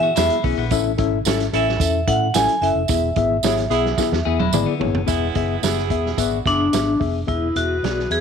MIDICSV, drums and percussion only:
0, 0, Header, 1, 2, 480
1, 0, Start_track
1, 0, Tempo, 547445
1, 628, Time_signature, 4, 2, 24, 8
1, 7194, End_track
2, 0, Start_track
2, 0, Title_t, "Drums"
2, 141, Note_on_c, 9, 42, 96
2, 148, Note_on_c, 9, 54, 90
2, 153, Note_on_c, 9, 38, 112
2, 228, Note_off_c, 9, 42, 0
2, 236, Note_off_c, 9, 54, 0
2, 241, Note_off_c, 9, 38, 0
2, 264, Note_on_c, 9, 42, 59
2, 352, Note_off_c, 9, 42, 0
2, 386, Note_on_c, 9, 46, 47
2, 387, Note_on_c, 9, 36, 94
2, 474, Note_off_c, 9, 46, 0
2, 475, Note_off_c, 9, 36, 0
2, 620, Note_on_c, 9, 42, 94
2, 625, Note_on_c, 9, 36, 114
2, 629, Note_on_c, 9, 54, 89
2, 708, Note_off_c, 9, 42, 0
2, 712, Note_off_c, 9, 36, 0
2, 717, Note_off_c, 9, 54, 0
2, 863, Note_on_c, 9, 42, 84
2, 865, Note_on_c, 9, 36, 107
2, 950, Note_off_c, 9, 42, 0
2, 953, Note_off_c, 9, 36, 0
2, 1098, Note_on_c, 9, 54, 91
2, 1111, Note_on_c, 9, 42, 84
2, 1116, Note_on_c, 9, 38, 100
2, 1186, Note_off_c, 9, 54, 0
2, 1198, Note_off_c, 9, 42, 0
2, 1203, Note_off_c, 9, 38, 0
2, 1230, Note_on_c, 9, 42, 54
2, 1238, Note_on_c, 9, 38, 38
2, 1318, Note_off_c, 9, 42, 0
2, 1326, Note_off_c, 9, 38, 0
2, 1346, Note_on_c, 9, 42, 69
2, 1434, Note_off_c, 9, 42, 0
2, 1482, Note_on_c, 9, 38, 42
2, 1570, Note_off_c, 9, 38, 0
2, 1578, Note_on_c, 9, 36, 102
2, 1581, Note_on_c, 9, 42, 102
2, 1587, Note_on_c, 9, 54, 84
2, 1665, Note_off_c, 9, 36, 0
2, 1668, Note_off_c, 9, 42, 0
2, 1674, Note_off_c, 9, 54, 0
2, 1820, Note_on_c, 9, 36, 96
2, 1824, Note_on_c, 9, 42, 93
2, 1907, Note_off_c, 9, 36, 0
2, 1912, Note_off_c, 9, 42, 0
2, 2055, Note_on_c, 9, 42, 96
2, 2057, Note_on_c, 9, 54, 101
2, 2067, Note_on_c, 9, 38, 117
2, 2142, Note_off_c, 9, 42, 0
2, 2144, Note_off_c, 9, 54, 0
2, 2155, Note_off_c, 9, 38, 0
2, 2179, Note_on_c, 9, 42, 66
2, 2267, Note_off_c, 9, 42, 0
2, 2308, Note_on_c, 9, 42, 74
2, 2396, Note_off_c, 9, 42, 0
2, 2527, Note_on_c, 9, 54, 86
2, 2536, Note_on_c, 9, 36, 120
2, 2538, Note_on_c, 9, 42, 97
2, 2615, Note_off_c, 9, 54, 0
2, 2624, Note_off_c, 9, 36, 0
2, 2626, Note_off_c, 9, 42, 0
2, 2771, Note_on_c, 9, 42, 78
2, 2775, Note_on_c, 9, 36, 107
2, 2859, Note_off_c, 9, 42, 0
2, 2863, Note_off_c, 9, 36, 0
2, 3008, Note_on_c, 9, 54, 93
2, 3016, Note_on_c, 9, 42, 86
2, 3021, Note_on_c, 9, 38, 98
2, 3095, Note_off_c, 9, 54, 0
2, 3104, Note_off_c, 9, 42, 0
2, 3109, Note_off_c, 9, 38, 0
2, 3137, Note_on_c, 9, 42, 56
2, 3146, Note_on_c, 9, 38, 36
2, 3225, Note_off_c, 9, 42, 0
2, 3233, Note_off_c, 9, 38, 0
2, 3253, Note_on_c, 9, 42, 75
2, 3340, Note_off_c, 9, 42, 0
2, 3381, Note_on_c, 9, 38, 39
2, 3469, Note_off_c, 9, 38, 0
2, 3488, Note_on_c, 9, 36, 94
2, 3491, Note_on_c, 9, 54, 84
2, 3497, Note_on_c, 9, 38, 62
2, 3576, Note_off_c, 9, 36, 0
2, 3578, Note_off_c, 9, 54, 0
2, 3585, Note_off_c, 9, 38, 0
2, 3619, Note_on_c, 9, 38, 60
2, 3707, Note_off_c, 9, 38, 0
2, 3857, Note_on_c, 9, 48, 72
2, 3944, Note_off_c, 9, 48, 0
2, 3969, Note_on_c, 9, 54, 101
2, 3980, Note_on_c, 9, 47, 97
2, 4056, Note_off_c, 9, 54, 0
2, 4068, Note_off_c, 9, 47, 0
2, 4217, Note_on_c, 9, 43, 104
2, 4305, Note_off_c, 9, 43, 0
2, 4338, Note_on_c, 9, 43, 88
2, 4426, Note_off_c, 9, 43, 0
2, 4451, Note_on_c, 9, 54, 79
2, 4456, Note_on_c, 9, 42, 81
2, 4457, Note_on_c, 9, 36, 101
2, 4539, Note_off_c, 9, 54, 0
2, 4544, Note_off_c, 9, 36, 0
2, 4544, Note_off_c, 9, 42, 0
2, 4693, Note_on_c, 9, 42, 78
2, 4697, Note_on_c, 9, 36, 92
2, 4780, Note_off_c, 9, 42, 0
2, 4785, Note_off_c, 9, 36, 0
2, 4937, Note_on_c, 9, 54, 87
2, 4941, Note_on_c, 9, 42, 77
2, 4946, Note_on_c, 9, 38, 91
2, 5024, Note_off_c, 9, 54, 0
2, 5029, Note_off_c, 9, 42, 0
2, 5034, Note_off_c, 9, 38, 0
2, 5068, Note_on_c, 9, 38, 30
2, 5156, Note_off_c, 9, 38, 0
2, 5176, Note_on_c, 9, 36, 87
2, 5176, Note_on_c, 9, 42, 69
2, 5263, Note_off_c, 9, 36, 0
2, 5264, Note_off_c, 9, 42, 0
2, 5315, Note_on_c, 9, 38, 34
2, 5403, Note_off_c, 9, 38, 0
2, 5417, Note_on_c, 9, 36, 85
2, 5419, Note_on_c, 9, 42, 96
2, 5420, Note_on_c, 9, 54, 81
2, 5505, Note_off_c, 9, 36, 0
2, 5506, Note_off_c, 9, 42, 0
2, 5508, Note_off_c, 9, 54, 0
2, 5661, Note_on_c, 9, 36, 88
2, 5667, Note_on_c, 9, 42, 75
2, 5748, Note_off_c, 9, 36, 0
2, 5755, Note_off_c, 9, 42, 0
2, 5901, Note_on_c, 9, 42, 89
2, 5902, Note_on_c, 9, 54, 89
2, 5913, Note_on_c, 9, 38, 105
2, 5989, Note_off_c, 9, 42, 0
2, 5990, Note_off_c, 9, 54, 0
2, 6001, Note_off_c, 9, 38, 0
2, 6145, Note_on_c, 9, 36, 84
2, 6151, Note_on_c, 9, 46, 46
2, 6232, Note_off_c, 9, 36, 0
2, 6239, Note_off_c, 9, 46, 0
2, 6385, Note_on_c, 9, 36, 98
2, 6388, Note_on_c, 9, 42, 72
2, 6473, Note_off_c, 9, 36, 0
2, 6476, Note_off_c, 9, 42, 0
2, 6629, Note_on_c, 9, 42, 63
2, 6717, Note_off_c, 9, 42, 0
2, 6876, Note_on_c, 9, 42, 69
2, 6880, Note_on_c, 9, 38, 82
2, 6963, Note_off_c, 9, 42, 0
2, 6968, Note_off_c, 9, 38, 0
2, 7009, Note_on_c, 9, 38, 31
2, 7097, Note_off_c, 9, 38, 0
2, 7111, Note_on_c, 9, 42, 57
2, 7194, Note_off_c, 9, 42, 0
2, 7194, End_track
0, 0, End_of_file